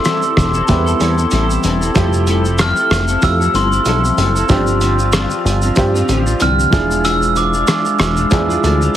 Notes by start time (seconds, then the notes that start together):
Already playing: G3 C4 E4 A4 C6
0.05 E3 G3 C4 E4 A4, cross-stick, closed hi-hat, shaker
0.22 C4 E4 A4, shaker
0.37 E1, kick, cross-stick, closed hi-hat, shaker
0.54 C4 E4 A4, shaker
0.68 E2 G3 B3 C4 E4, kick, closed hi-hat, shaker
0.86 C4 E4 A4, shaker
1.00 E2 G3 C4 E4 A4, closed hi-hat, shaker
1.17 C4 E4 A4, shaker
1.31 A1 E3 G3 C4 E4 A4, closed hi-hat, shaker
1.50 shaker
1.64 E1 G3 C4 E4 A4, closed hi-hat, shaker
1.81 C4 E4 A4, shaker
1.95 F1 F3 G3 A3 C4 E4 G4 A4, kick, closed hi-hat, shaker
2.13 shaker
2.27 G3 C4 E4 A4, closed hi-hat, shaker
2.44 C4 E4 A4, shaker
2.59 F3 G3 C4 E4 A4 F6, cross-stick, clap, closed hi-hat, shaker
2.76 C4 E4 A4, shaker
2.91 F1, cross-stick, clap, closed hi-hat, shaker
3.08 C4 E4 A4, shaker
3.21 F2 F3 A3 E4 G4 E6, kick, closed hi-hat, shaker
3.40 C4 E4 A4, shaker
3.54 G1 G3 C4 E4 A4 C6, closed hi-hat, shaker
3.72 C4 E4 A4, shaker
3.86 B1 F3 G3 C4 E4 A4, clap, closed hi-hat, shaker
4.05 shaker
4.18 F#1 G3 C4 E4 A4, closed hi-hat, shaker
4.35 C4 E4 A4, shaker
4.49 G1 G2 D3 F3 C4 D4 F4 G4, kick, closed hi-hat, shaker
4.67 shaker
4.81 D3 F3 C4 F4, closed hi-hat, shaker
4.99 F3 C4 F4, shaker
5.13 G2 D3 F3 C4 F4, cross-stick, clap, closed hi-hat, shaker
5.30 F3 C4 F4, shaker
5.45 G1, closed hi-hat, shaker
5.62 F3 C4 F4, shaker
5.76 G2 F3 C4 D4 G4, kick, closed hi-hat, shaker
5.94 F3 C4 F4, shaker
6.09 A1 D3 F3 C4 F4, closed hi-hat, shaker
6.26 F3 C4 F4, shaker
6.40 C2 G2 D3 F3 C4 F4 F6, clap, closed hi-hat, shaker
6.60 shaker
6.71 E1 E3 F3 G#3 D4 E4 G#4, kick, closed hi-hat, shaker
6.75 D4 F4
6.91 shaker
7.04 E3 G#3 D4 F4 E6, closed hi-hat, shaker
7.22 shaker
7.35 E3 G#3 D4 F4 D6, closed hi-hat, shaker
7.53 G#3 D4 F4, shaker
7.68 E3 G#3 D4 F4, cross-stick, clap, closed hi-hat, shaker
7.85 G#3 D4 F4, shaker
7.99 E1, cross-stick, clap, closed hi-hat, shaker
8.17 G#3 D4 F4, shaker
8.31 E2 F3 D4 E4 G#4, kick, closed hi-hat, shaker
8.48 G#3 D4 F4, shaker
8.63 D2 E3 G#3 D4 F4, closed hi-hat, shaker
8.81 G#3 D4 F4, shaker